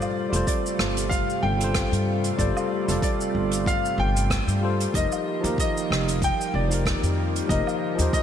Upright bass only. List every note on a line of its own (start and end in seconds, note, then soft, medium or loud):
0.33 0.41 F1 medium
0.79 1.17 G1 medium
1.43 1.81 G1 loud
1.92 2.30 G2 medium
2.39 2.49 G1 loud
2.88 2.97 F1 medium
3.35 3.73 G1 medium
3.98 4.36 G1 medium
4.48 4.85 G2 medium
4.94 5.05 F1 medium
5.44 5.52 D#2 loud
5.90 6.28 F1 medium
6.54 6.92 F1 medium
7.03 7.40 F2 medium
7.49 7.60 F1 loud
7.99 8.07 D#2 medium